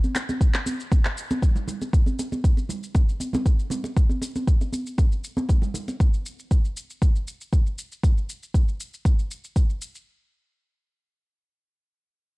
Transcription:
0.04 high conga medium
0.04 shaker soft
0.15 clap medium
0.15 muted conga soft
0.15 shaker medium
0.29 high conga medium
0.29 shaker soft
0.41 kick loud
0.41 shaker medium
0.54 clap medium
0.54 muted conga soft
0.54 shaker soft
0.66 high conga medium
0.66 shaker medium
0.80 shaker soft
0.92 kick loud
0.92 muted conga soft
0.92 shaker medium
1.05 clap medium
1.05 shaker soft
1.17 shaker medium
1.31 high conga loud
1.31 shaker soft
1.42 kick medium
1.42 muted conga soft
1.42 low conga medium
1.42 shaker medium
1.56 low conga medium
1.56 shaker soft
1.68 low conga medium
1.68 shaker medium
1.82 muted conga soft
1.82 shaker soft
1.93 kick loud
1.93 shaker soft
2.06 high conga medium
2.06 shaker soft
2.19 muted conga soft
2.19 shaker medium
2.32 high conga medium
2.32 shaker soft
2.44 kick loud
2.44 shaker soft
2.57 muted conga soft
2.57 shaker soft
2.69 low conga medium
2.69 shaker medium
2.83 shaker soft
2.95 kick loud
2.95 muted conga soft
2.95 shaker medium
3.09 shaker soft
3.20 high conga medium
3.20 shaker medium
3.33 high conga loud
3.33 low conga medium
3.33 shaker soft
3.46 kick medium
3.46 muted conga soft
3.46 shaker soft
3.59 shaker soft
3.70 high conga medium
3.70 low conga medium
3.70 shaker medium
3.84 muted conga soft
3.84 shaker soft
3.97 kick loud
3.97 shaker soft
4.09 high conga medium
4.09 shaker soft
4.22 muted conga soft
4.22 shaker medium
4.36 high conga medium
4.36 shaker soft
4.47 kick loud
4.47 shaker soft
4.61 muted conga soft
4.61 shaker soft
4.73 high conga medium
4.73 shaker medium
4.87 shaker soft
4.98 kick loud
4.98 muted conga soft
4.98 shaker soft
5.12 shaker soft
5.24 shaker medium
5.37 high conga medium
5.37 shaker soft
5.49 kick medium
5.49 muted conga soft
5.49 low conga medium
5.49 shaker soft
5.62 low conga medium
5.62 shaker soft
5.74 low conga medium
5.74 shaker medium
5.88 muted conga soft
5.88 shaker soft
6.00 kick loud
6.00 shaker soft
6.14 shaker soft
6.26 shaker medium
6.39 shaker soft
6.51 kick medium
6.51 shaker soft
6.65 shaker soft
6.77 shaker medium
6.90 shaker soft
7.02 kick loud
7.02 shaker soft
7.16 shaker soft
7.28 shaker medium
7.41 shaker soft
7.53 kick medium
7.53 shaker soft
7.66 shaker soft
7.78 shaker medium
7.92 shaker soft
8.03 kick loud
8.03 shaker soft
8.18 shaker soft
8.29 shaker medium
8.43 shaker soft
8.54 kick loud
8.54 shaker soft
8.68 shaker soft
8.80 shaker medium
8.94 shaker soft
9.05 kick loud
9.05 shaker soft
9.19 shaker soft
9.31 shaker medium
9.44 shaker soft
9.56 kick medium
9.56 shaker soft
9.70 shaker soft
9.82 shaker medium
9.95 shaker soft

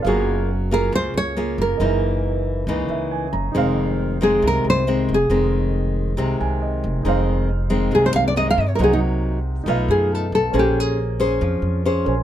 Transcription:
0.02 0.88 F#1 medium
0.02 0.91 F#3 soft
0.02 1.76 G#4 medium
0.02 1.75 F5 medium
0.06 0.49 A#3 medium
0.06 0.49 F4 medium
0.06 1.78 F#4 medium
0.06 0.50 G#4 medium
0.06 1.77 A#4 medium
0.71 1.33 A#3 medium
0.71 1.34 F4 medium
0.71 1.34 G#4 medium
0.71 0.93 A#4 medium
0.92 1.13 C#2 medium
0.92 1.78 C#3 medium
0.92 1.17 C5 loud
1.14 1.55 C#2 medium
1.14 1.57 C#5 medium
1.37 1.77 A#3 soft
1.37 1.77 F4 medium
1.37 1.77 G#4 medium
1.58 1.79 F#1 medium
1.58 3.31 A#4 medium
1.77 2.63 F#1 medium
1.77 2.65 F#2 medium
1.77 2.64 E3 medium
1.77 2.64 A#3 medium
1.77 3.51 G#4 soft
1.77 3.52 A#4 soft
1.77 3.50 D#5 soft
1.81 2.65 D#4 medium
1.81 3.53 E4 medium
2.67 2.88 C#2 medium
2.67 3.53 C#3 medium
2.67 3.27 E3 medium
2.67 3.27 A#3 medium
2.67 3.27 D#4 medium
2.89 3.30 C#2 medium
2.89 3.10 E5 medium
3.11 3.32 G#5 medium
3.33 3.53 F#1 medium
3.33 3.53 A#5 soft
3.52 4.38 F1 medium
3.52 4.40 F2 medium
3.52 4.17 D#3 soft
3.52 4.17 G#3 soft
3.52 6.99 D#4 medium
3.52 7.00 G#4 medium
3.56 4.17 C4 medium
3.56 7.01 C5 medium
3.56 7.02 F5 medium
4.21 4.83 D#3 medium
4.21 4.83 G#3 medium
4.21 4.83 C4 medium
4.21 4.44 G#4 medium
4.42 4.63 C2 medium
4.42 5.28 C3 medium
4.47 4.67 A#4 medium
4.64 5.05 C2 medium
4.70 5.12 C5 loud
4.87 5.15 D#3 medium
4.87 5.15 G#3 medium
4.87 5.15 C4 medium
5.09 5.29 F1 medium
5.14 6.60 G#4 medium
5.30 6.13 F1 medium
5.30 6.15 F2 medium
5.30 6.14 D#3 medium
5.30 6.14 G#3 medium
5.30 6.14 C4 medium
6.17 6.38 C2 loud
6.17 7.02 C3 medium
6.17 7.01 D#3 medium
6.17 7.01 G#3 soft
6.17 7.02 C4 medium
6.40 6.81 C2 medium
6.40 6.60 G#5 medium
6.62 7.02 D#5 medium
6.84 7.04 F1 medium
7.03 7.88 F1 medium
7.03 7.90 F2 soft
7.03 7.48 D#3 soft
7.03 7.49 G#3 soft
7.03 7.49 C4 medium
7.03 8.74 D#4 medium
7.03 8.76 G#4 medium
7.03 8.77 C5 soft
7.08 8.78 F5 medium
7.70 8.32 D#3 medium
7.70 8.32 G#3 medium
7.70 8.32 C4 medium
7.91 8.12 C2 medium
7.91 8.77 C3 medium
7.91 8.04 G#4 medium
8.06 8.15 C5 medium
8.14 8.54 C2 medium
8.14 8.25 F5 medium
8.28 8.37 D5 medium
8.36 8.64 D#3 soft
8.36 8.64 G#3 soft
8.36 8.64 C4 medium
8.36 8.47 D#5 medium
8.51 8.60 F5 medium
8.58 8.78 G2 medium
8.58 8.69 D#5 medium
8.69 8.74 C#5 medium
8.75 9.63 C2 medium
8.75 9.64 C3 medium
8.75 9.38 F#3 soft
8.75 9.38 A#3 medium
8.75 9.62 D#4 soft
8.75 8.81 A#4 medium
8.75 9.64 A#4 soft
8.80 9.38 D#4 medium
8.80 8.92 G#4 medium
8.80 9.65 C5 soft
8.80 9.66 F#5 medium
8.93 8.99 D#4 medium
9.64 9.87 B1 loud
9.64 10.52 B2 medium
9.64 10.51 D#4 medium
9.64 10.52 A4 medium
9.64 10.52 B4 medium
9.68 10.26 A3 medium
9.68 10.26 D#4 soft
9.68 10.26 F4 medium
9.68 10.53 F5 medium
9.88 10.29 F#2 medium
9.88 10.11 G#4 medium
10.15 10.34 A4 medium
10.32 10.53 B1 medium
10.32 10.55 A4 medium
10.52 11.37 A#1 medium
10.52 11.39 A#3 medium
10.52 12.03 C#4 soft
10.52 10.97 C#4 medium
10.52 10.97 G#4 soft
10.52 12.04 A#4 soft
10.52 10.98 C5 medium
10.52 12.04 C5 soft
10.57 10.80 G4 medium
10.57 12.05 G#5 medium
10.80 11.43 G#4 medium
11.20 11.82 C#4 medium
11.20 11.82 G#4 medium
11.20 11.82 C5 medium
11.41 11.62 F2 loud
11.41 12.23 F3 medium
11.62 12.03 F2 medium
11.85 12.13 C#4 medium
11.85 12.14 G#4 soft
11.85 12.14 C5 medium
12.05 12.23 A#1 medium
12.05 12.23 C#4 soft
12.05 12.23 A#4 soft
12.05 12.23 C5 soft
12.05 12.23 G#5 soft

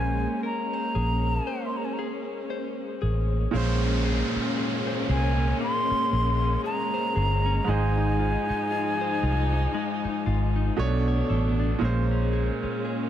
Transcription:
0.00 0.25 A#1 loud
0.00 3.50 G#3 medium
0.00 3.48 A#3 medium
0.00 3.50 A#3 medium
0.00 3.53 A#3 medium
0.00 3.50 C#4 medium
0.00 3.66 C#4 medium
0.00 3.52 C5 medium
0.00 1.86 F5 medium
0.00 0.44 G#5 loud
0.43 0.73 A#4 medium
0.43 1.68 A#5 medium
0.73 1.46 C5 medium
0.95 1.38 A#1 medium
0.95 1.98 G#4 medium
1.47 2.50 C5 medium
1.66 1.78 C6 medium
1.77 1.86 A#5 medium
1.85 1.95 G#5 medium
1.93 2.00 A#5 medium
1.99 3.01 G#4 medium
2.50 3.87 C5 medium
3.02 3.45 A1 medium
3.02 4.05 G#4 medium
3.51 4.21 A#1 loud
3.51 7.62 A#2 medium
3.51 7.63 G#3 medium
3.51 10.74 G#3 medium
3.51 5.60 A#3 medium
3.51 7.64 A#3 medium
3.51 7.64 C#4 medium
3.51 downlifter medium
3.57 7.65 C5 medium
3.84 4.34 C#4 medium
4.05 4.57 G#4 medium
4.35 5.38 C#4 medium
4.35 muted fingered electric bass stroke soft
4.57 5.09 G#4 medium
4.87 6.94 C5 medium
5.09 5.51 C2 loud
5.09 6.12 G#4 medium
5.09 5.58 G#5 medium
5.39 5.89 C#4 medium
5.61 7.67 A#3 medium
5.61 6.61 C6 loud
5.91 6.41 C#4 medium
5.91 muted fingered electric bass stroke soft
6.12 6.55 A#1 medium
6.12 6.64 G#4 medium
6.42 7.45 C#4 medium
6.64 7.15 G#4 medium
6.64 7.71 A#5 loud
6.94 9.01 C5 medium
7.16 7.58 G1 medium
7.16 8.19 G#4 medium
7.46 7.80 C#4 medium
7.65 8.35 G#1 loud
7.65 10.72 G#2 medium
7.65 10.75 F3 medium
7.65 10.73 G#3 medium
7.65 9.73 G#3 medium
7.65 10.75 D#4 medium
7.69 10.75 D#4 medium
7.69 10.75 C5 medium
7.69 10.79 G#5 loud
7.98 8.48 D#4 medium
8.19 8.70 F4 medium
8.49 9.51 D#4 medium
8.49 muted fingered electric bass stroke medium
8.71 9.21 F4 medium
9.01 10.90 C5 medium
9.23 9.65 C2 medium
9.23 10.25 F4 medium
9.53 10.03 D#4 medium
9.74 10.90 G#3 medium
10.04 10.55 D#4 medium
10.04 muted fingered electric bass stroke soft
10.26 10.69 G#1 medium
10.26 10.90 F4 medium
10.56 10.77 D#4 medium
10.77 11.20 B1 loud
10.77 11.81 B2 medium
10.77 11.81 A3 medium
10.77 11.80 A3 medium
10.77 11.81 B3 medium
10.77 11.80 B3 medium
10.77 11.80 D4 medium
10.77 11.82 D4 medium
10.77 11.82 C#5 loud
11.08 13.10 C#5 medium
11.29 11.72 A1 medium
11.29 11.93 A4 medium
11.60 11.93 D4 medium
11.79 12.48 A#1 loud
11.79 13.10 A#2 medium
11.79 13.10 G#3 medium
11.79 13.10 A#3 medium
11.79 13.10 C#4 medium
11.83 13.10 C#4 medium
11.83 13.10 C5 medium
12.11 12.62 C#4 medium
12.33 12.84 G#4 medium
12.63 13.10 C#4 medium
12.63 muted fingered electric bass stroke soft
12.85 13.10 G#4 medium

